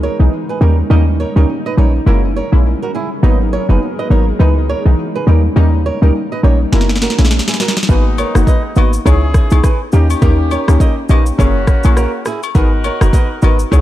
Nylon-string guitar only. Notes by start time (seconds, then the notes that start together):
0.03 A#4 C#5
0.49 G#4 B4
0.62 G4 A#4
0.91 A#4 D#5
1.20 A#4 C#5
1.37 G4 A#4
1.66 B4 D#5
1.78 A#4 C#5
2.07 F#4 A#4
2.36 A#4 C#5
2.82 F#4 A#4
2.95 E4 G#4
3.24 B4 D#5
3.53 A#4 C#5
3.70 G#4 B4
3.99 B4 D#5
4.11 A#4 C#5
4.40 G#4 B4
4.69 A#4 C#5
5.16 G#4 B4
5.28 G4 A#4
5.57 A#4 D#5
5.86 A#4 C#5
6.03 G4 A#4
6.32 B4 D#5
6.44 A#4 C#5
6.73 F#4 A#4
7.02 F#4 A#4
7.48 E4 G#4
7.61 F#4 A#4
7.90 G#4 B4
8.19 A#4 C#5
8.48 B4 D#5
8.77 B4 D#5
9.06 G#4 C#5
9.65 G#4 B4
9.94 D#4 G4
10.23 G4 A#4
10.52 A#4 C#5
10.81 A#4 D#5
11.10 B4 D#5
11.39 A#4 C#5
11.97 F#4 A#4
12.27 E4 G#4
12.56 G#4 B4
12.85 A#4 C#5
13.14 B4 D#5
13.43 B4 D#5
13.72 G#4 C#5